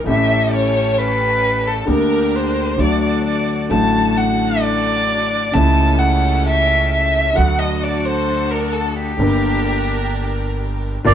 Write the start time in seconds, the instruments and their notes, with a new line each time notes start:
0.04 upright bass A1, grand piano A1 A2 E3 A3 C#4, string section C#4 G4 A4, violin E5
0.09 grand piano G4
0.53 violin C#5
0.98 violin B4
1.67 violin A4
1.87 grand piano D2 D3 G3 A#3 G4, upright bass D2, string section D4 G4 A#4, violin A#4
2.35 violin C5
2.76 upright bass D2, grand piano D2 D3 F#3 A3 F#4, string section D4 F#4 A4, violin D5
3.01 violin D5
3.24 violin D5
3.69 grand piano A1 A2 D3 F#3 A3 F#4, upright bass A1, string section D4 F#4 A4, violin A5
4.17 violin F#5
4.61 violin D5
5.53 upright bass C#2, grand piano C#2 C#3 G3 A3 E4, string section C#4 G4 A4, violin A5
5.99 violin F#5
6.47 violin E5
6.92 violin E5
7.35 grand piano D2 D3 F#3 A3 F#4, upright bass D2, string section D4 F#4 A4, violin F#5
7.59 violin D#5
7.83 violin D5
8.05 violin C5
8.51 violin A#4
8.72 violin A4
8.96 violin G4
9.17 upright bass G1, grand piano G1 G2 D3 G3 A#3, string section D4 G4 A#4
9.21 grand piano G4
11.04 grand piano G1 G2 D3 G3 A#3 F4, upright bass G1, violin D4, string section F4 G4 A#4, bandoneon D5